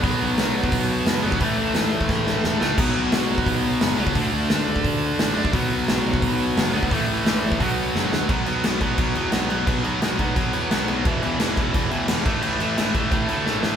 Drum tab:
CC |----------------|----------------|x---------------|----------------|
HH |o---o---o---o---|o---o-----------|----o---o---o---|o---o---o---o---|
SD |----o-------o---|----o---o-o-o-o-|----o-------o---|----o-------o---|
BD |o------oo------o|o------oo-------|o------oo------o|o------oo------o|

CC |----------------|----------------|x-x-x-x-x-x-x-x-|x-x-x-x-x-x-x-x-|
HH |o---o---o---o---|o---o---o-------|----------------|----------------|
SD |----o-------o---|----o-------o-o-|----o-------o---|----o-------o---|
BD |o------oo------o|o------oo-------|o-----o-o-------|o-----o-o-------|

CC |x-x-x-x-x-x-x-x-|x-x-x-x-x-x-----|
HH |----------------|----------------|
SD |----o-------o---|----o-------o-o-|
BD |o-----o-o-----o-|------o-o-------|